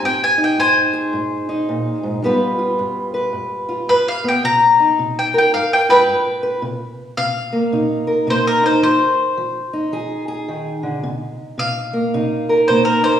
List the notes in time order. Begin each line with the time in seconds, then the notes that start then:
Already playing: G4
0.02 G#2 G5
0.24 G#5
0.38 D#4
0.44 G5
0.58 G#2 C5 G#5
0.93 G#4
1.13 G#2
1.49 D#4
1.69 A#2
2.03 G#2
2.22 G2 G3 B3 F4 B4
2.59 F4
2.79 G2
3.14 B4
3.33 G2
3.69 F4
3.88 G2 B4
4.08 F5
4.24 B3
4.28 G5
4.44 C3 A#5
4.80 D#4
4.99 C3
5.19 G5
5.34 A#4
5.38 G5
5.54 G2 F5
5.73 G5
5.89 F4 B4 G5
6.08 G2
6.43 B4
6.62 C3
7.17 C3 F5
7.52 A#3
7.72 C3 D#4
8.07 A#4
8.27 C3 A#3 C5
8.47 A#4
8.63 D#4 C5
8.82 F3 C5
9.37 F3
9.73 D#4
9.92 F3 G#4
10.28 G#4
10.48 D#3
10.83 D3
11.03 C3
11.58 C3 F5
11.93 A#3
12.14 C3 D#4
12.49 A#4
12.68 C3 A#3 C5
12.85 A#4
13.03 D#4 C5